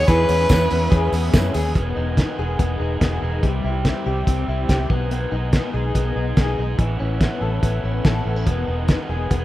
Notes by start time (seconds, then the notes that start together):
Already playing: B3 D#4
0.07 E2 B2 E3 G#3 C#4 E4 G#4 B4 C#5, kick, closed hi-hat, tambourine
0.28 E2 E3 G#3 C#4 E4, open hi-hat, tambourine
0.49 E2 B2 E3 G#3 B3 C#4 E4, kick, snare, closed hi-hat, tambourine
0.70 E2 E3 G#3 C#4 E4, open hi-hat, tambourine
0.91 E2 E3 G#3 C#4 E4 G#4, kick, closed hi-hat
1.12 E2 E3 G#3 B3 C#4 E4, open hi-hat, tambourine
1.32 E2 F#2 B2 E3 G#3 C#4 E4, kick, snare, closed hi-hat, tambourine
1.53 D#2 E3 G#3 C#4 E4 G#4, open hi-hat, tambourine
1.75 E1 E2 B2 D#3 G#3 B3 G#4, kick, closed hi-hat
1.96 E1 D#3 G#3 B3 D#4 G#4
2.17 E2 B2 D#3 G#3 B3 G#4, kick, snare, closed hi-hat
2.38 E1 D#3 G#3 B3 G#4
2.58 E1 D#3 G#3 B3 G#4, kick, closed hi-hat
2.79 E1 D#3 G#3 B3 D#4 G#4
3.01 E1 E2 B2 D#3 G#3 B3 G#4, kick, snare, closed hi-hat
3.22 E1 D#3 G#3 B3 D#4 G#4
3.43 C2 C3 E3 G3 C4 G4, kick, closed hi-hat
3.64 C2 G3 C4 E4 G4
3.85 C3 E3 G3 C4 G4, kick, snare, closed hi-hat
4.06 C2 G3 C4 G4
4.27 C2 E3 G3 C4 G4, kick, closed hi-hat
4.48 C2 G3 C4 E4 G4
4.69 C2 C3 E3 G3 C4 G4, kick, snare, closed hi-hat
4.90 B1 G#3 B3 D#4 G#4, kick
5.11 B2 D#3 G#3 B3 D#4 G#4, closed hi-hat
5.32 B1 G#3 D#4 G#4
5.53 B2 D#3 G#3 B3 D#4 G#4, kick, snare, closed hi-hat
5.73 B1 G#3 D#4 G#4
5.94 B1 D#3 G#3 B3 D#4 G#4, kick, closed hi-hat
6.16 B1 G#3 D#4 G#4
6.36 B1 B2 D#3 G#3 D#4 G#4, kick, snare, closed hi-hat
6.57 B1 G#3 D#4 G#4
6.78 A1 A2 E3 B3 C#4 E4, kick, closed hi-hat
6.98 A1 B3 C#4 E4
7.19 A2 E3 B3 C#4 E4, kick, snare, closed hi-hat
7.40 A1 B3 C#4 E4 A4
7.62 A1 E3 B3 C#4 E4, kick, closed hi-hat
7.83 A1 B3 C#4 E4
8.04 A1 A2 E3 B3 C#4 E4 A4, kick, snare, closed hi-hat
8.25 A1 B3 C#4 E4
8.36 C#4
8.46 E1 E2 B2 D#3 G#3 B3 G#4, kick, closed hi-hat
8.67 E1 D#3 G#3 B3 D#4 G#4
8.88 E2 B2 D#3 G#3 B3 G#4, kick, snare, closed hi-hat
9.09 E1 D#3 G#3 B3 G#4
9.31 E1 D#3 G#3 B3 G#4, kick, closed hi-hat